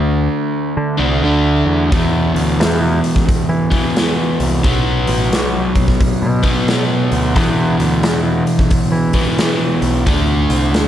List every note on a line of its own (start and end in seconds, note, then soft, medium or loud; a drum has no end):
0.00 0.27 D2 medium
0.00 0.96 D3 medium
0.00 0.97 A3 medium
0.00 0.96 D4 medium
0.77 0.97 D3 medium
0.97 1.22 C2 medium
0.97 1.21 D3 medium
0.97 1.23 A3 medium
0.97 1.22 D4 medium
1.23 1.63 D2 medium
1.23 1.90 D3 medium
1.23 1.91 A3 medium
1.23 1.91 D4 medium
1.66 1.91 E2 medium
1.91 3.68 E2 medium
1.91 2.32 E2 medium
1.91 3.69 B2 medium
1.91 3.69 E3 medium
1.91 kick loud
1.91 open hi-hat medium
2.35 2.60 D2 medium
2.35 open hi-hat soft
2.60 3.00 E2 medium
2.60 snare loud
2.60 open hi-hat medium
3.04 open hi-hat soft
3.16 kick medium
3.16 snare soft
3.29 kick loud
3.29 open hi-hat medium
3.49 4.35 E3 medium
3.71 3.94 E2 medium
3.71 3.95 B2 medium
3.71 3.95 E3 medium
3.71 kick medium
3.71 open hi-hat soft
3.96 4.63 E2 medium
3.96 4.62 B2 medium
3.96 4.64 E3 medium
3.96 snare loud
3.96 open hi-hat medium
4.39 4.64 C2 medium
4.39 open hi-hat soft
4.63 5.04 B1 loud
4.63 6.40 B2 medium
4.63 6.41 F#3 medium
4.63 6.41 B3 loud
4.63 kick loud
4.63 open hi-hat medium
5.07 5.33 A1 medium
5.07 open hi-hat medium
5.33 5.72 B1 medium
5.33 snare loud
5.33 open hi-hat medium
5.75 kick medium
5.75 open hi-hat soft
5.88 kick medium
5.88 snare soft
6.01 kick loud
6.01 open hi-hat medium
6.22 7.07 B2 medium
6.43 6.67 B2 medium
6.43 6.67 F#3 medium
6.43 6.66 B3 medium
6.43 kick medium
6.43 open hi-hat soft
6.68 7.34 B2 medium
6.68 7.35 F#3 medium
6.68 7.35 B3 medium
6.68 snare loud
6.68 open hi-hat medium
7.12 7.36 D2 medium
7.12 open hi-hat soft
7.35 9.11 E2 medium
7.35 7.75 E2 medium
7.35 9.12 B2 medium
7.35 9.12 E3 medium
7.35 kick loud
7.35 open hi-hat medium
7.79 8.03 D2 medium
7.79 open hi-hat soft
8.03 8.43 E2 medium
8.03 snare loud
8.03 open hi-hat medium
8.47 open hi-hat soft
8.59 kick medium
8.59 snare soft
8.71 kick loud
8.71 open hi-hat medium
8.92 9.77 E3 medium
9.13 9.37 E2 medium
9.13 9.38 B2 medium
9.13 9.37 E3 medium
9.13 kick medium
9.13 open hi-hat soft
9.38 10.05 E2 medium
9.38 10.05 B2 medium
9.38 10.06 E3 medium
9.38 snare loud
9.38 open hi-hat medium
9.82 10.07 B1 medium
9.82 open hi-hat soft
10.06 10.46 D2 medium
10.06 10.88 D3 medium
10.06 10.88 A3 medium
10.06 10.88 D4 loud
10.06 kick loud
10.06 open hi-hat medium
10.49 10.73 C2 medium
10.49 open hi-hat soft
10.73 10.88 D2 loud
10.73 snare loud
10.73 open hi-hat medium